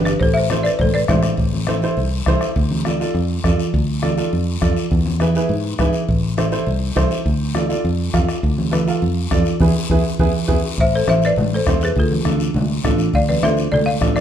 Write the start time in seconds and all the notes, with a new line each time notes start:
Already playing: G1 D4 G4 B4
0.05 G4 B4, bombo rim, short guiro
0.20 A1 A4 C5, bombo low, long guiro
0.34 C5 E5
0.50 E4 A4 C5, bombo rim, high conga, short guiro
0.63 B4 D5, short guiro
0.79 A1 A4 C5, bombo low, low conga, long guiro
0.94 B4 D5
1.08 A1 E4 A4 C5 E5, bombo low, bombo rim, high conga, low conga, short guiro
1.23 bombo rim, short guiro
1.37 A1, bombo low, long guiro
1.53 high conga
1.67 E4 A4 C5, bombo rim, high conga, short guiro
1.82 E4 A4 C5, short guiro
1.97 C2, long guiro
2.26 C2 E4 A4 C5, bombo low, bombo rim, high conga, short guiro
2.41 bombo rim, short guiro
2.56 D2, bombo low, long guiro
2.71 high conga
2.85 F4 A4 D5, bombo rim, high conga, short guiro
3.00 F4 A4 D5, short guiro
3.14 F2, long guiro
3.44 F2 F4 A4 D5, bombo low, bombo rim, high conga, short guiro
3.60 short guiro
3.74 D2, bombo low, long guiro
4.02 F4 A4 D5, bombo rim, high conga, short guiro
4.18 F4 A4 D5, short guiro
4.33 F2, long guiro
4.61 F2 F4 A4 D5, bombo low, bombo rim, high conga, short guiro
4.76 short guiro
4.91 E2, bombo low, long guiro
5.06 high conga
5.20 E4 G#4 B4, bombo rim, high conga, short guiro
5.35 E4 G#4 B4, short guiro
5.49 G#2, long guiro
5.78 G#2 E4 G#4 B4, bombo low, bombo rim, high conga, short guiro
5.93 short guiro
6.09 A1, bombo low, long guiro
6.37 E4 A4 C5, bombo rim, high conga, short guiro
6.52 E4 A4 C5, short guiro
6.67 C2, long guiro
6.96 C2 E4 A4 C5, bombo low, bombo rim, high conga, short guiro
7.11 short guiro
7.26 D2, bombo low, long guiro
7.55 F4 A4 D5, bombo rim, high conga, short guiro
7.69 F4 A4 D5, short guiro
7.84 F2, long guiro
8.13 F2 F4 A4 F5, bombo low, bombo rim, high conga, short guiro
8.29 bombo rim, short guiro
8.43 D2, bombo low, long guiro
8.58 high conga
8.71 F4 A4 B4, bombo rim, high conga, short guiro
8.87 F4 A4 F5, short guiro
9.02 F2, long guiro
9.31 F2 F4 A4 D5, bombo low, bombo rim, high conga, short guiro
9.45 short guiro
9.60 E2 E4 G#4 B4, bombo low, high conga, long guiro
9.89 E2 E4 G#4 B4, bombo low, high conga, long guiro
10.19 E2 E4 G#4 B4, bombo low, high conga, long guiro
10.48 E2 E4 G#4 B4, bombo low, high conga, long guiro
10.78 A1 C5 E5, bombo low, long guiro
10.95 A4 C5
11.07 A1 E4 A4 C5 E5, bombo rim, high conga, short guiro
11.22 B4, short guiro
11.26 D5
11.36 A1, low conga, long guiro
11.54 A4 C5
11.67 E2 E4 A4 C5, bombo low, bombo rim, high conga, low conga, short guiro
11.81 G#4 B4, short guiro
11.96 D2 F4 A4, bombo low, long guiro
12.12 high conga
12.25 D2 D4 F4 A4, bombo rim, high conga, short guiro
12.40 short guiro
12.54 D2, low conga, long guiro
12.84 A1 D4 F4 A4, bombo low, bombo rim, high conga, short guiro
12.98 short guiro
13.14 D2 D5 F5, bombo low, long guiro
13.29 B4 D5, high conga
13.42 D2 D4 F4 A4 C5 E5, bombo rim, high conga, short guiro
13.57 short guiro
13.72 D2 A4 D5, low conga, long guiro
13.86 D5 F5
14.01 A1 D4 F4 A4, bombo low, bombo rim, high conga, short guiro
14.16 B4 D5, bombo rim, short guiro